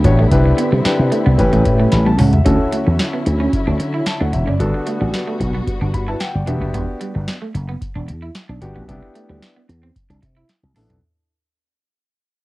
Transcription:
Already playing: string section D3 G3 B3 E4
0.04 slap bass A1, grand piano D4 F#4 G4 C#5, muted clean electric guitar stroke, kick, closed hi-hat
0.19 clean electric guitar A3
0.31 slap bass C2, string section D3 C4, grand piano D4 E4 G4 B4, kick, closed hi-hat
0.45 muted clean electric guitar stroke
0.58 clean electric guitar B3, closed hi-hat
0.72 slap bass C3, clean electric guitar G3
0.85 grand piano D4 E4 G4 B4, muted clean electric guitar stroke, muted slap bass stroke, snare, closed hi-hat
1.00 slap bass C3
1.12 clean electric guitar A3, closed hi-hat
1.26 slap bass C2, clean electric guitar B3
1.38 slap bass A1, string section C#3 G3 A3, grand piano C#4 E4 G4 B4, kick, closed hi-hat
1.53 slap bass A1, clean electric guitar A3, closed hi-hat
1.65 slap bass A2, muted clean electric guitar stroke, kick, closed hi-hat
1.80 clean electric guitar A3
1.92 slap bass A1, grand piano B5, muted clean electric guitar stroke, snare, closed hi-hat
2.06 clean electric guitar B3, grand piano A5, high tom
2.19 slap bass C#2, clean electric guitar C#4, grand piano F#5, mid tom, open hi-hat
2.33 grand piano E5, closed hi-hat, floor tom
2.45 slap bass D2, string section D3 F#3 C#4 E4, grand piano C#4 E4 F#4 A4, clean electric guitar C#4, kick, closed hi-hat
2.72 clean electric guitar A3, closed hi-hat
2.87 slap bass E2, muted clean electric guitar stroke
2.99 snare, closed hi-hat
3.13 clean electric guitar B3
3.26 slap bass D2, muted clean electric guitar stroke, closed hi-hat
3.40 clean electric guitar C#4
3.53 kick, closed hi-hat
3.67 slap bass D2, clean electric guitar D4
3.80 slap bass D3, muted clean electric guitar stroke, closed hi-hat
3.94 clean electric guitar E4
4.06 grand piano A5, snare, closed hi-hat
4.20 slap bass D2, clean electric guitar D4, grand piano F#5
4.33 slap bass E1, grand piano E5, muted clean electric guitar stroke, kick, closed hi-hat
4.47 slap bass F#1, clean electric guitar C#4, grand piano D5
4.59 slap bass G1, string section G3 B3 F#4, grand piano B3 D4 F#4 A4, kick, closed hi-hat
4.74 muted clean electric guitar stroke
4.87 clean electric guitar A3, closed hi-hat
5.01 slap bass A1, clean electric guitar G3
5.14 snare, closed hi-hat
5.27 clean electric guitar A3
5.40 slap bass B1, muted clean electric guitar stroke, kick, closed hi-hat
5.54 clean electric guitar B3
5.67 kick, closed hi-hat
5.81 slap bass G1, clean electric guitar D4
5.94 slap bass G2, grand piano B5, muted clean electric guitar stroke, kick, closed hi-hat
6.08 clean electric guitar E4, grand piano B4 A5
6.20 grand piano F#5 G5, muted clean electric guitar stroke, snare, closed hi-hat
6.35 slap bass G1, grand piano D5
6.47 slap bass E1, grand piano B3 D4 F#4 G4 E5, clean electric guitar D4, string section E4, closed hi-hat
6.61 slap bass F#1, clean electric guitar B3, kick
6.74 slap bass E1, clean electric guitar B3, kick, closed hi-hat
7.01 clean electric guitar G3, closed hi-hat
7.15 slap bass G1, muted clean electric guitar stroke
7.28 snare, closed hi-hat
7.42 clean electric guitar A3
7.55 slap bass F#1, muted clean electric guitar stroke, closed hi-hat
7.69 clean electric guitar B3
7.81 kick, closed hi-hat
7.95 slap bass E1, clean electric guitar D4
8.08 slap bass E2, muted clean electric guitar stroke, closed hi-hat
8.22 clean electric guitar E4
8.35 snare, closed hi-hat
8.49 slap bass B1, clean electric guitar D4
8.61 slap bass G1, grand piano B3 D4 F#4 G4, muted clean electric guitar stroke, kick, closed hi-hat
8.76 slap bass A1, clean electric guitar B3
8.88 slap bass C2, grand piano B3 D4 E4 G4, kick, closed hi-hat
9.03 muted clean electric guitar stroke
9.15 clean electric guitar A3, closed hi-hat
9.29 slap bass D2, clean electric guitar G3
9.42 snare, closed hi-hat
9.56 clean electric guitar B3
9.69 slap bass E2, muted clean electric guitar stroke, closed hi-hat
9.83 clean electric guitar C4
9.96 kick, closed hi-hat
10.10 slap bass C2, clean electric guitar D4, closed hi-hat
10.22 slap bass C3, muted clean electric guitar stroke, kick, closed hi-hat
10.37 clean electric guitar E4
10.49 muted clean electric guitar stroke, snare, closed hi-hat
10.63 slap bass C2, high tom
10.76 slap bass A1, grand piano B3 D4 E4 A4, clean electric guitar D4, mid tom, open hi-hat
10.90 slap bass B1, clean electric guitar C4, closed hi-hat, floor tom

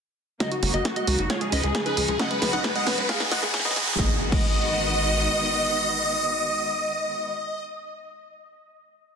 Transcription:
0.40 string section C#3 F#3 A#3 D#4, synth arpeggio sound G#3, supersaw synth F#4 D#5, digital synth lead D#5, kick, snare, closed hi-hat, riser
0.52 synth arpeggio sound D#4, digital synth lead F#4, supersaw synth F#4, closed hi-hat
0.63 analog synth bass F#1, string section C#3 F#3 A#3 D#4, synth arpeggio sound G#3, digital synth lead F#4, supersaw synth F#4, kick, open hi-hat
0.74 analog synth bass F#1, synth arpeggio sound G#3, supersaw synth F#4 D#5, digital synth lead D#5, closed hi-hat
0.85 string section C#3 F#3 A#3 D#4, synth arpeggio sound C#4, digital synth lead F#4, kick, snare, closed hi-hat
0.96 synth arpeggio sound G#3, supersaw synth F#4 D#5, digital synth lead D#5, closed hi-hat
1.07 analog synth bass C#2, string section C#3 F#3 A#3 D#4, synth arpeggio sound G#3, digital synth lead F#4, supersaw synth F#4, open hi-hat
1.19 analog synth bass F#1, synth arpeggio sound D#4, digital synth lead F#4, supersaw synth F#4, closed hi-hat
1.30 string section C#3 F3 G#3 D#4, synth arpeggio sound G#3, supersaw synth F4 C#5, digital synth lead C#5, kick, snare, closed hi-hat
1.41 synth arpeggio sound G#3, digital synth lead G#4, supersaw synth G#4, closed hi-hat
1.52 analog synth bass C#2, string section C#3 F3 G#3 D#4, synth arpeggio sound C#4, supersaw synth B4 D#5, digital synth lead D#5, open hi-hat
1.63 analog synth bass C#2, synth arpeggio sound G#3, digital synth lead G#4, supersaw synth G#4, closed hi-hat
1.75 string section C#3 F3 G#3 D#4, synth arpeggio sound G#3, digital synth lead G#4, supersaw synth G#4, kick, snare, closed hi-hat
1.86 synth arpeggio sound D#4, supersaw synth G#4 B4, digital synth lead B4, closed hi-hat
1.97 analog synth bass C#2, string section C#3 F3 G#3 D#4, synth arpeggio sound G#3, digital synth lead G#4, supersaw synth G#4, open hi-hat
2.08 analog synth bass C#2, synth arpeggio sound G#3, digital synth lead G#4, supersaw synth G#4, closed hi-hat
2.19 string section C#3 F#3 B3 F#4, synth arpeggio sound C#4, supersaw synth D#5 F#5, digital synth lead F#5, kick, snare, closed hi-hat
2.31 synth arpeggio sound G#3, supersaw synth B4, digital synth lead B4, closed hi-hat
2.42 analog synth bass B1, string section C#3 F#3 B3 F#4, synth arpeggio sound G#3, digital synth lead B4, supersaw synth B4, snare, open hi-hat
2.53 analog synth bass B1, synth arpeggio sound D#4, supersaw synth D#5 F#5, digital synth lead F#5, closed hi-hat
2.64 string section C#3 F#3 B3 F#4, synth arpeggio sound G#3, digital synth lead B4, supersaw synth B4, kick, snare, closed hi-hat
2.75 synth arpeggio sound G#3, supersaw synth D#5 F#5, digital synth lead F#5, closed hi-hat
2.87 analog synth bass F#1, string section C#3 F#3 B3 F#4, synth arpeggio sound C#4, digital synth lead B4, supersaw synth B4, kick, snare, open hi-hat
2.98 analog synth bass B1, synth arpeggio sound G#3, digital synth lead B4, supersaw synth B4, closed hi-hat
3.09 string section D#3 G#3 B3 F#4, synth arpeggio sound G#3, supersaw synth G#4 F5, digital synth lead F5, kick, snare, closed hi-hat
3.20 synth arpeggio sound D#4, digital synth lead G#4, supersaw synth G#4, snare, closed hi-hat
3.31 analog synth bass G#1, string section D#3 G#3 B3 F#4, synth arpeggio sound G#3, supersaw synth D#5 F#5, digital synth lead F#5, snare, open hi-hat
3.42 analog synth bass G#1, synth arpeggio sound G#3, digital synth lead G#4, supersaw synth G#4, snare, closed hi-hat
3.54 string section D#3 G#3 B3 F#4, synth arpeggio sound C#4, digital synth lead G#4, supersaw synth G#4, kick, snare, closed hi-hat
3.59 snare
3.65 synth arpeggio sound G#3, supersaw synth B4 D#5, digital synth lead D#5, snare, closed hi-hat
3.71 snare
3.76 analog synth bass G#1, string section D#3 G#3 B3 F#4, synth arpeggio sound G#3, digital synth lead G#4, supersaw synth G#4, snare, open hi-hat
3.82 snare
3.87 analog synth bass G#1, synth arpeggio sound D#4, digital synth lead G#4, supersaw synth G#4, snare, closed hi-hat
3.93 snare
3.99 analog synth bass G#1, string section D#3 G#3 B3 F#4, synth arpeggio sound G#3, digital synth lead D#5, supersaw synth D#5, kick, snare, impact
4.32 analog synth bass G#1, synth arpeggio sound G#3, digital synth lead D#5, supersaw synth D#5, kick, crash

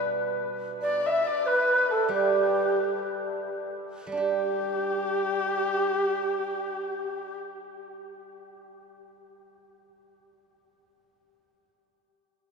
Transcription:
Already playing: guzheng B2 G3 B3 D4 G4
0.81 xiao D5, erhu D5
1.03 xiao E5, erhu E5
1.24 xiao D5, erhu D5
1.46 xiao B4, erhu B4
1.90 xiao A4, erhu A4
2.09 guzheng G3
2.13 xiao G4, erhu G4
4.07 guzheng G3
4.12 guzheng D4
4.17 guzheng G4, erhu G4, xiao G4

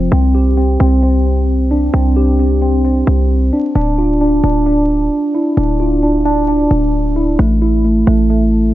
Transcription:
Already playing: tine electric piano F3 C4
0.12 808-style bass C2, tine electric piano C4
0.35 tine electric piano G4
0.57 tine electric piano C4
0.80 808-style bass C2, tine electric piano C4
1.03 tine electric piano C4
1.71 tine electric piano D4
1.94 808-style bass C2, tine electric piano C4
2.16 tine electric piano G4
2.39 tine electric piano C4
2.62 tine electric piano C4
2.85 tine electric piano C4
3.07 808-style bass C2
3.53 tine electric piano D4
3.75 808-style bass D1, tine electric piano D4
3.98 tine electric piano F4
4.21 tine electric piano D4
4.44 808-style bass D1, tine electric piano D4
4.66 tine electric piano D4
5.35 tine electric piano E4
5.57 808-style bass D1, tine electric piano D4
5.80 tine electric piano F4
6.03 tine electric piano D4
6.25 tine electric piano D4
6.48 tine electric piano D4
6.71 808-style bass D1
7.16 tine electric piano E4
7.39 808-style bass A1, tine electric piano A3
7.62 tine electric piano E4
7.85 tine electric piano A3
8.07 808-style bass A1, tine electric piano A3
8.30 tine electric piano A3

